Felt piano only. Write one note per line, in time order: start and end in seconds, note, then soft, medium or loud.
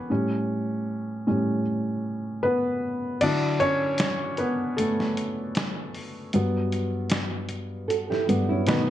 0.00 0.11 E3 soft
0.00 0.11 G3 medium
0.00 0.12 B3 medium
0.00 0.11 C#4 medium
0.00 0.12 D4 medium
0.00 0.11 G4 medium
0.00 0.12 B4 loud
0.00 0.11 C#5 loud
0.10 1.26 A2 medium
0.10 1.26 G3 medium
0.10 1.26 C#4 medium
1.27 1.62 A2 soft
1.27 1.62 G3 soft
1.27 1.62 C#4 medium
2.43 3.18 B3 medium
2.43 3.23 B4 medium
3.21 4.34 D3 medium
3.21 4.35 F#3 medium
3.21 3.58 D4 medium
3.21 4.35 E4 medium
3.21 3.61 D5 loud
3.60 4.35 C#4 medium
3.60 4.40 C#5 loud
4.38 4.75 B3 medium
4.38 4.74 B4 medium
4.77 5.91 A3 medium
4.77 5.90 A4 medium
6.34 7.46 G2 medium
6.34 7.47 F#3 soft
6.34 7.47 B3 medium
8.29 8.63 G2 soft
8.29 8.63 F#3 soft
8.29 8.64 B3 medium
8.67 8.90 B2 medium
8.67 8.90 D#3 medium
8.67 8.90 A3 medium
8.67 8.90 B3 medium
8.67 8.90 B4 medium